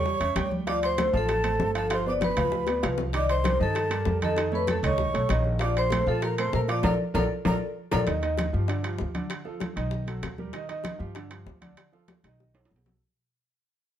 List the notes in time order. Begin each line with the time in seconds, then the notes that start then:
Already playing: E2 G3 G4 C#5 G5 C#6
0.05 high bongo, high conga
0.20 E2 C#4 C#5 E5, high bongo, high conga, high timbale
0.36 D2 G3 G4 G5, high bongo, low bongo, high conga, high timbale
0.51 high bongo, high conga
0.67 F3 F4 D5 F5 D6, high bongo, high conga, high timbale
0.83 C5 C6, high bongo, high conga, high timbale
0.98 A3 A4 C5, high bongo, high conga, high timbale
1.13 A1 F3 F4 F5 A5, high bongo, high conga
1.17 A4
1.29 high bongo, high conga, high timbale
1.44 A3 A4 C5, high conga, high timbale
1.59 G1 A3 A4 C5, high bongo, low bongo, high conga
1.75 F3 F4 A4 F5 A5, high bongo, high timbale
1.90 F3 F4 C5 F5 C6, high bongo, high conga, high timbale
2.06 B3 B4 D5 D6, high bongo, high conga
2.10 D5
2.21 B4 B5, high bongo, high conga, high timbale
2.37 D2 F3 F4 F5, high conga, low conga, high timbale
2.52 high bongo, high conga
2.67 B3 B4 D5, high bongo, high conga, high timbale
2.83 C2 F3 F4 F5, high bongo, high conga, high timbale
2.98 low bongo
3.13 D#3 D#4 D#5 D6, high bongo, high conga, high timbale
3.17 D5
3.29 C5 C6, high bongo, high conga, high timbale
3.44 G3 G4 A#4, high bongo, high conga, high timbale
3.60 G2 D#3 D#4 A4 D#5 A5, high bongo, high conga
3.75 high bongo, high conga, high timbale
3.90 G3 G4 A#4, high conga, high timbale
4.05 F2 G3 G4 A#4, high bongo, low bongo, high conga
4.21 D#3 D#4 A4 D#5 A5, high bongo, high conga, high timbale
4.37 D#3 D#4 D#5, high bongo, high conga, high timbale
4.52 A3 A4 B4 C#5 B5, high bongo, high conga
4.67 A4 A5, high bongo, high conga, high timbale
4.83 C#2 D#3 D#4 C#5 D#5 C#6, high conga, low conga, high timbale
4.98 high bongo, high conga, low conga
5.13 B1 A3 A4 C#5, high bongo, high conga, high timbale
5.29 A#1 D#3 D#4 D#5, high bongo, low bongo, high conga, high timbale
5.44 high bongo
5.59 F3 F4 D5 F5 D6, high bongo, high conga, high timbale
5.75 C5 C6, high bongo, high conga, high timbale
5.90 A3 A4 A#4, high bongo, high conga, high timbale
6.07 A#2 F3 F4 A4 F5 A5, high bongo, high conga
6.22 A#4 A#5, high bongo, high conga, high timbale
6.38 A3 A4 A#4 C5 C6, high conga, high timbale
6.52 A#2 A3 A4 A#4 A#5, high bongo, low bongo, high conga
6.68 F3 F4 D5 F5 D6, high bongo, high timbale
6.83 A#1 F4 A4 A#4 D5 A#5, low bongo, high conga, high timbale
7.14 A#1 F4 A4 A#4 D5 A#5, low bongo, high conga, high timbale
7.45 A#1 F4 A4 A#4 D5 A#5, low bongo, high conga, high timbale
7.91 A#1 F4 A4 A#4 D5 A#5, low bongo, high conga, high timbale
8.07 D#2 D#3 D#4 D#5, high bongo, high conga, high timbale
8.22 D#3 D#4 D#5, high bongo, high conga, high timbale
8.37 high bongo, high conga, high timbale
8.53 G2 F3 F4 G4, high bongo, high conga
8.68 D3 D4 D5, high bongo, high conga, high timbale
8.83 F3 F4 G4, high conga, high timbale
8.98 D2, high bongo, low bongo, high conga
9.14 D3 D4 D5, high bongo, high conga, high timbale
9.30 high bongo, high conga, high timbale
9.45 F3 F4 A4, high bongo, high conga
9.60 high bongo, high conga, high timbale
9.76 B1 D#3 D#4 D#5, high conga, high timbale
9.91 high bongo, high conga
10.07 F#3 F#4 A4, high bongo, high conga, high timbale
10.22 D#2, high bongo, low bongo, high conga, high timbale
10.38 G3 G4 A#4, high bongo, high conga
10.53 D#3 D#4 D#5, high bongo, high conga, high timbale
10.69 D#3 D#4 D#5, high bongo, high conga, high timbale
10.84 high bongo, high conga, high timbale
10.99 G2 F3 F4 G4, high bongo, high conga
11.15 D3 D4 D5, high bongo, high conga, high timbale
11.30 F3 F4 G4, high conga, high timbale
11.46 D2, high bongo, low bongo, high conga
11.61 D3 D4 D5, high bongo, high conga, high timbale
11.77 high bongo, high conga, high timbale
11.92 F3 F4 A4, high bongo, high conga
12.08 high bongo, high conga, high timbale
12.24 B1 D#3 D#4 D#5, high bongo, high conga, high timbale
12.40 high bongo, high conga
12.54 F#3 F#4 A4, high conga, high timbale
12.65 high timbale
12.70 B1, low bongo, high conga
12.76 low timbale
12.85 F#3 F#4 A4, low bongo, high conga, low timbale